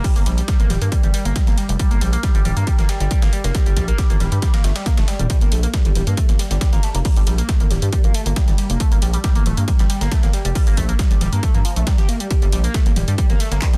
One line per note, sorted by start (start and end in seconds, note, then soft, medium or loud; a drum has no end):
0.04 0.08 G3 medium
0.04 kick loud
0.04 closed hi-hat medium
0.04 open hi-hat medium
0.16 0.23 G1 loud
0.16 0.19 A#3 loud
0.16 closed hi-hat medium
0.26 0.41 A#1 loud
0.26 0.30 G3 medium
0.26 open hi-hat loud
0.26 ride medium
0.38 0.41 G3 loud
0.38 closed hi-hat soft
0.48 0.54 G3 loud
0.48 kick loud
0.48 snare loud
0.48 closed hi-hat medium
0.48 ride medium
0.60 0.67 G1 loud
0.60 0.68 A#3 loud
0.60 closed hi-hat soft
0.60 mid tom medium
0.70 0.78 D1 loud
0.70 0.74 G3 medium
0.70 snare soft
0.70 open hi-hat medium
0.70 mid tom medium
0.70 ride medium
0.81 0.88 G2 medium
0.81 0.85 A#3 loud
0.81 closed hi-hat medium
0.92 0.96 G3 medium
0.92 kick loud
0.92 closed hi-hat medium
0.92 ride medium
1.03 1.10 G1 medium
1.03 1.07 G3 loud
1.03 closed hi-hat soft
1.03 mid tom medium
1.14 1.20 G3 loud
1.14 open hi-hat loud
1.14 ride medium
1.25 1.32 G1 loud
1.25 1.34 A#3 loud
1.25 closed hi-hat soft
1.36 1.39 G3 medium
1.36 kick loud
1.36 snare loud
1.36 closed hi-hat medium
1.36 ride medium
1.47 1.54 G1 loud
1.47 1.51 A#3 loud
1.47 snare soft
1.47 closed hi-hat soft
1.47 mid tom medium
1.58 1.61 G3 medium
1.58 open hi-hat medium
1.58 ride medium
1.69 1.76 F1 loud
1.69 1.73 G3 loud
1.69 closed hi-hat medium
1.79 1.86 G3 loud
1.79 kick loud
1.79 closed hi-hat medium
1.79 ride medium
1.91 1.98 G1 loud
1.91 2.00 A#3 loud
1.91 closed hi-hat medium
2.01 2.16 A#1 loud
2.01 2.05 G3 medium
2.01 open hi-hat loud
2.01 ride medium
2.13 2.16 A#3 loud
2.13 closed hi-hat medium
2.23 2.27 G3 medium
2.23 kick loud
2.23 snare loud
2.23 closed hi-hat medium
2.23 ride medium
2.35 2.42 G1 loud
2.35 2.38 G3 loud
2.35 closed hi-hat medium
2.35 mid tom medium
2.35 ride soft
2.45 2.53 D1 loud
2.45 2.51 G3 loud
2.45 open hi-hat medium
2.45 mid tom medium
2.45 ride medium
2.57 2.64 G2 loud
2.57 2.65 A#3 loud
2.57 closed hi-hat soft
2.67 2.71 G3 medium
2.67 kick loud
2.67 closed hi-hat medium
2.67 ride medium
2.79 2.85 G1 medium
2.79 2.82 A#3 loud
2.79 snare medium
2.79 closed hi-hat soft
2.79 mid tom medium
2.89 2.93 G3 medium
2.89 snare loud
2.89 open hi-hat loud
2.89 ride medium
3.00 3.07 G1 loud
3.00 3.04 G3 loud
3.00 closed hi-hat medium
3.11 3.17 G3 loud
3.11 kick loud
3.11 snare soft
3.11 closed hi-hat medium
3.11 ride medium
3.22 3.29 G1 loud
3.22 3.31 A#3 loud
3.22 snare loud
3.22 closed hi-hat medium
3.22 mid tom medium
3.22 ride medium
3.33 3.37 G3 medium
3.33 open hi-hat medium
3.44 3.51 F1 loud
3.44 3.48 A#3 loud
3.44 snare soft
3.44 closed hi-hat medium
3.44 ride medium
3.55 3.58 G3 medium
3.55 kick loud
3.55 snare loud
3.55 closed hi-hat loud
3.55 ride medium
3.66 3.73 G1 medium
3.66 3.70 G3 loud
3.66 closed hi-hat medium
3.77 3.92 A#1 loud
3.77 3.83 G3 medium
3.77 kick medium
3.77 snare soft
3.77 open hi-hat loud
3.77 ride medium
3.88 3.97 A#3 loud
3.88 closed hi-hat medium
3.98 4.02 G3 medium
3.98 kick loud
3.98 snare loud
3.98 closed hi-hat medium
3.98 ride medium
4.10 4.17 G1 loud
4.10 4.13 A#3 loud
4.10 closed hi-hat medium
4.10 mid tom medium
4.20 4.28 D1 loud
4.20 4.24 G3 medium
4.20 snare soft
4.20 open hi-hat medium
4.20 mid tom medium
4.20 ride medium
4.32 4.39 G2 medium
4.32 4.35 G3 loud
4.32 closed hi-hat medium
4.42 4.49 G3 loud
4.42 kick loud
4.42 snare loud
4.42 closed hi-hat medium
4.42 ride medium
4.54 4.62 A#3 loud
4.54 snare loud
4.54 closed hi-hat medium
4.54 mid tom medium
4.54 ride medium
4.64 4.72 G1 medium
4.64 4.68 A3 medium
4.64 snare loud
4.64 open hi-hat loud
4.64 ride medium
4.76 4.81 G3 loud
4.76 snare loud
4.76 closed hi-hat medium
4.76 ride medium
4.86 4.90 A#3 medium
4.86 kick loud
4.86 snare loud
4.86 closed hi-hat medium
4.86 high tom medium
4.86 ride medium
4.97 5.04 F1 medium
4.97 5.03 A3 loud
4.97 snare loud
4.97 closed hi-hat medium
4.97 mid tom medium
4.97 high tom medium
4.97 ride medium
5.08 5.17 G3 medium
5.08 snare loud
5.08 open hi-hat medium
5.08 ride medium
5.19 5.26 D1 medium
5.19 5.23 G3 loud
5.19 closed hi-hat medium
5.19 mid tom medium
5.30 5.36 G3 loud
5.30 kick loud
5.30 closed hi-hat loud
5.30 ride medium
5.41 5.48 G1 loud
5.41 5.50 A#3 loud
5.41 closed hi-hat medium
5.52 5.67 A#1 loud
5.52 5.58 A3 loud
5.52 open hi-hat loud
5.52 ride medium
5.63 5.67 A#3 loud
5.63 closed hi-hat medium
5.74 5.77 G3 medium
5.74 kick loud
5.74 snare loud
5.74 closed hi-hat loud
5.74 ride medium
5.85 5.92 G1 loud
5.85 5.88 G3 loud
5.85 closed hi-hat medium
5.85 mid tom medium
5.85 ride soft
5.95 6.03 D1 loud
5.95 6.02 G3 loud
5.95 open hi-hat medium
5.95 mid tom medium
5.95 ride medium
6.07 6.14 G2 loud
6.07 6.16 A#3 loud
6.07 closed hi-hat medium
6.17 6.24 A3 loud
6.17 kick loud
6.17 closed hi-hat medium
6.17 ride medium
6.29 6.36 G1 medium
6.29 6.32 A#3 loud
6.29 snare medium
6.29 closed hi-hat medium
6.29 mid tom medium
6.39 6.43 G3 medium
6.39 snare medium
6.39 open hi-hat loud
6.39 ride medium
6.51 6.58 G1 loud
6.51 6.54 G3 loud
6.51 snare medium
6.51 closed hi-hat medium
6.61 6.68 G3 loud
6.61 kick loud
6.61 snare loud
6.61 closed hi-hat loud
6.61 ride medium
6.73 6.80 G1 loud
6.73 6.81 A#3 loud
6.73 snare medium
6.73 closed hi-hat medium
6.73 mid tom medium
6.83 6.89 A3 loud
6.83 snare soft
6.83 open hi-hat medium
6.83 ride medium
6.95 7.02 F1 loud
6.95 6.98 A#3 loud
6.95 closed hi-hat medium
6.95 ride soft
7.05 7.09 G3 medium
7.05 kick loud
7.05 closed hi-hat medium
7.05 open hi-hat medium
7.16 7.23 G1 loud
7.16 7.20 G3 loud
7.16 closed hi-hat medium
7.27 7.42 A#1 loud
7.27 7.33 G3 loud
7.27 open hi-hat loud
7.27 ride medium
7.38 7.47 A#3 loud
7.38 closed hi-hat medium
7.49 7.55 A3 loud
7.49 kick loud
7.49 snare loud
7.49 closed hi-hat loud
7.49 ride medium
7.60 7.67 G1 loud
7.60 7.64 A#3 loud
7.60 closed hi-hat medium
7.60 mid tom medium
7.71 7.78 D1 loud
7.71 7.74 G3 medium
7.71 snare soft
7.71 open hi-hat medium
7.71 mid tom medium
7.71 ride medium
7.82 7.89 G2 loud
7.82 7.86 G3 loud
7.82 closed hi-hat medium
7.93 7.99 G3 loud
7.93 kick loud
7.93 closed hi-hat medium
7.93 ride medium
8.04 8.11 G1 medium
8.04 8.13 A#3 loud
8.04 closed hi-hat medium
8.04 mid tom medium
8.14 8.21 A3 loud
8.14 open hi-hat loud
8.14 ride medium
8.26 8.33 G1 loud
8.26 8.29 A#3 loud
8.26 closed hi-hat medium
8.36 8.40 G3 medium
8.36 kick loud
8.36 snare loud
8.36 closed hi-hat medium
8.36 ride medium
8.48 8.55 G1 loud
8.48 8.51 G3 loud
8.48 snare soft
8.48 closed hi-hat medium
8.48 mid tom medium
8.58 8.65 G3 loud
8.58 open hi-hat medium
8.58 ride medium
8.70 8.77 F1 loud
8.70 8.78 A#3 loud
8.70 closed hi-hat medium
8.80 8.87 A3 loud
8.80 kick loud
8.80 closed hi-hat medium
8.80 ride medium
8.92 8.99 G1 loud
8.92 8.95 A#3 loud
8.92 closed hi-hat medium
9.02 9.17 A#1 loud
9.02 9.06 G3 medium
9.02 open hi-hat loud
9.02 ride medium
9.14 9.17 G3 loud
9.14 closed hi-hat medium
9.24 9.30 G3 loud
9.24 kick loud
9.24 snare loud
9.24 closed hi-hat medium
9.24 ride medium
9.35 9.42 G1 loud
9.35 9.44 A#3 loud
9.35 closed hi-hat medium
9.35 mid tom medium
9.35 ride soft
9.46 9.54 D1 loud
9.46 9.52 A3 loud
9.46 open hi-hat loud
9.46 mid tom medium
9.46 ride medium
9.57 9.64 G2 medium
9.57 9.61 A#3 loud
9.57 closed hi-hat medium
9.68 9.72 G3 medium
9.68 kick loud
9.68 closed hi-hat medium
9.68 ride medium
9.79 9.86 G1 medium
9.79 9.83 G3 loud
9.79 snare medium
9.79 closed hi-hat medium
9.79 mid tom medium
9.90 9.96 G3 loud
9.90 snare medium
9.90 open hi-hat loud
9.90 ride medium
10.01 10.08 G1 loud
10.01 10.10 A#3 loud
10.01 snare medium
10.01 closed hi-hat medium
10.12 10.18 A3 loud
10.12 kick loud
10.12 snare loud
10.12 closed hi-hat medium
10.12 ride medium
10.23 10.30 G1 loud
10.23 10.27 A#3 loud
10.23 snare medium
10.23 closed hi-hat medium
10.23 mid tom medium
10.33 10.37 G3 medium
10.33 snare soft
10.33 open hi-hat loud
10.33 ride medium
10.45 10.52 F1 loud
10.45 10.48 G3 loud
10.45 closed hi-hat medium
10.45 ride soft
10.55 10.62 G3 loud
10.55 kick loud
10.55 closed hi-hat medium
10.55 open hi-hat medium
10.67 10.74 G1 loud
10.67 10.75 A#3 loud
10.67 closed hi-hat medium
10.77 10.92 A#1 loud
10.77 10.84 A3 loud
10.77 kick medium
10.77 open hi-hat loud
10.77 ride medium
10.89 10.92 A#3 loud
10.89 closed hi-hat medium
10.99 11.03 G3 medium
10.99 kick loud
10.99 snare loud
10.99 closed hi-hat medium
10.99 ride medium
11.11 11.18 G1 loud
11.11 11.14 G3 loud
11.11 closed hi-hat medium
11.11 mid tom medium
11.21 11.29 D1 loud
11.21 11.27 G3 loud
11.21 snare soft
11.21 open hi-hat loud
11.21 mid tom medium
11.21 ride medium
11.33 11.40 G2 loud
11.33 11.41 A#3 loud
11.33 closed hi-hat medium
11.43 11.49 A3 loud
11.43 kick loud
11.43 closed hi-hat medium
11.43 ride medium
11.54 11.61 G2 medium
11.54 11.58 A#3 loud
11.54 closed hi-hat medium
11.54 mid tom loud
11.65 11.71 F3 medium
11.65 open hi-hat loud
11.65 ride medium
11.76 11.83 A#1 medium
11.76 11.82 A3 medium
11.76 closed hi-hat medium
11.87 11.91 G3 loud
11.87 kick loud
11.87 snare loud
11.87 closed hi-hat medium
11.87 ride medium
11.98 12.07 G4 medium
11.98 snare soft
11.98 closed hi-hat soft
11.98 mid tom medium
12.09 12.15 A#3 medium
12.09 open hi-hat medium
12.09 ride medium
12.20 12.26 G3 medium
12.20 closed hi-hat medium
12.31 12.34 G3 medium
12.31 kick loud
12.31 closed hi-hat medium
12.31 ride medium
12.42 12.49 G1 loud
12.42 12.45 G3 loud
12.42 closed hi-hat medium
12.52 12.68 A#1 loud
12.52 12.59 G3 loud
12.52 open hi-hat loud
12.52 ride medium
12.64 12.73 A#3 loud
12.64 closed hi-hat soft
12.74 12.81 A3 loud
12.74 kick loud
12.74 snare loud
12.74 closed hi-hat medium
12.74 ride medium
12.86 12.93 G1 loud
12.86 12.89 A#3 loud
12.86 closed hi-hat medium
12.86 mid tom medium
12.86 ride soft
12.96 13.04 D1 loud
12.96 13.00 G3 medium
12.96 open hi-hat loud
12.96 mid tom loud
12.96 ride medium
13.08 13.15 G2 loud
13.08 13.11 G3 loud
13.08 closed hi-hat medium
13.18 13.24 G3 loud
13.18 kick loud
13.18 closed hi-hat medium
13.18 ride medium
13.30 13.37 G1 medium
13.30 13.38 A#3 loud
13.30 snare medium
13.30 closed hi-hat medium
13.30 mid tom loud
13.40 13.46 A3 loud
13.40 snare medium
13.40 open hi-hat loud
13.40 ride medium
13.52 13.58 G1 loud
13.52 13.55 A#3 loud
13.52 snare medium
13.52 closed hi-hat medium
13.62 13.66 G3 medium
13.62 kick loud
13.62 snare loud
13.62 clap loud
13.62 closed hi-hat medium
13.62 ride medium
13.73 13.77 G1 loud
13.73 13.77 G3 loud
13.73 snare medium
13.73 closed hi-hat soft
13.73 mid tom medium